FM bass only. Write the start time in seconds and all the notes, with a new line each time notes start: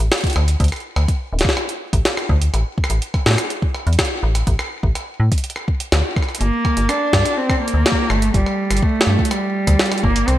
0.36 D2
0.60 D2
0.96 D2
1.33 D1
1.93 A1
2.29 D2
2.54 A1
2.90 A1
3.26 A2
3.87 E2
4.23 A1
4.47 A1
4.83 A1
5.20 A2
5.92 D2
6.41 G1
6.77 G1
7.13 G2
7.74 D2
8.10 G1
8.34 G1
8.71 G1
9.07 G2
9.67 D2
10.04 G1
10.28 C2